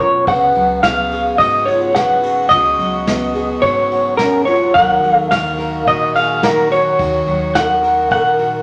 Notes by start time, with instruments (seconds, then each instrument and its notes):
Already playing: upright bass F#2, steel-string acoustic guitar F#3 C#4 F#4
0.00 steel-string acoustic guitar B2, bansuri F4, clean electric guitar C#5
0.27 upright bass C#2, steel-string acoustic guitar C#3, string section C#3 B3 F#4, bansuri C#5, clean electric guitar F#5, kick, ride
0.31 bansuri B4
0.55 upright bass C#2, steel-string acoustic guitar F#3, ride
0.83 steel-string acoustic guitar B3, bansuri G#4, clean electric guitar F5, snare, ride
1.11 steel-string acoustic guitar G#4, ride
1.38 upright bass G#1, steel-string acoustic guitar G#2, bansuri F#4, clean electric guitar D#5, kick, ride
1.66 steel-string acoustic guitar F#4, bansuri F#4, clean electric guitar C#5, ride
1.72 bansuri F4
1.95 steel-string acoustic guitar G#4, bansuri B4, clean electric guitar F#5, snare, ride
2.22 steel-string acoustic guitar F#4, ride
2.49 upright bass C#2, steel-string acoustic guitar C#3, bansuri F#4, clean electric guitar D#5, kick, ride
2.78 upright bass C#2, steel-string acoustic guitar F#3, ride
3.06 steel-string acoustic guitar B3, snare, ride
3.35 steel-string acoustic guitar G#4, ride
3.62 upright bass G#1, steel-string acoustic guitar G#2, bansuri F#4, clean electric guitar C#5, kick, ride
3.91 steel-string acoustic guitar F#4, ride
4.17 bansuri C#4, steel-string acoustic guitar G#4, clean electric guitar A#4, snare, ride
4.45 bansuri F4, steel-string acoustic guitar F#4, clean electric guitar C#5, ride
4.74 upright bass D#2, steel-string acoustic guitar D#3 F#3 D#4 F#4 A#4, string section D#3 A#3 F#4, bansuri A#4, clean electric guitar F#5, kick, ride
5.03 upright bass D#2, steel-string acoustic guitar F#3, ride
5.12 bansuri A4, clean electric guitar F5
5.30 steel-string acoustic guitar D#4, bansuri A#4, clean electric guitar F5, snare, ride
5.58 steel-string acoustic guitar A#4, ride
5.85 upright bass A#1, steel-string acoustic guitar A#2, bansuri F#4, clean electric guitar D#5, kick, ride
6.14 steel-string acoustic guitar F#4, bansuri G#4, clean electric guitar F5, ride
6.43 bansuri F4, steel-string acoustic guitar F#4, clean electric guitar A#4, snare, ride
6.48 bansuri D#4
6.70 steel-string acoustic guitar F#4, bansuri F#4, clean electric guitar C#5, ride
6.99 upright bass D#2, steel-string acoustic guitar D#3, kick, ride
7.26 upright bass D#2, steel-string acoustic guitar F#3, ride
7.55 steel-string acoustic guitar D#4, bansuri A#4, clean electric guitar F#5, snare, ride
7.83 steel-string acoustic guitar A#4, ride
8.10 upright bass A#1, steel-string acoustic guitar A#2, bansuri A#4, clean electric guitar F#5, kick, ride
8.39 steel-string acoustic guitar F#4, ride